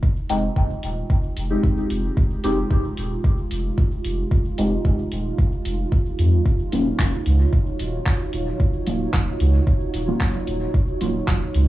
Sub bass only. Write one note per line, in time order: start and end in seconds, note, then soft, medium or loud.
0.29 0.48 F1 loud
0.56 0.75 F1 medium
0.83 1.02 D#1 medium
1.37 1.56 F1 medium
1.90 2.09 F1 medium
2.44 2.63 F1 medium
2.71 2.90 F1 medium
2.97 3.16 D#1 loud
3.51 3.70 F1 medium
4.05 4.23 F1 medium
4.58 4.77 F1 loud
4.85 5.04 F1 medium
5.12 5.31 D#1 medium
5.65 5.84 F1 loud
6.19 6.38 F2 loud
6.72 6.91 D#1 medium
6.99 7.18 D#1 medium
7.26 7.45 C#2 loud
7.80 7.98 D#1 loud
8.33 8.52 D#1 medium
8.87 9.06 D#1 loud
9.13 9.32 D#1 medium
9.40 9.59 C#2 loud
9.94 10.13 D#1 medium
10.47 10.66 D#1 medium
11.01 11.20 D#1 loud
11.28 11.47 D#1 medium
11.54 11.68 C#2 medium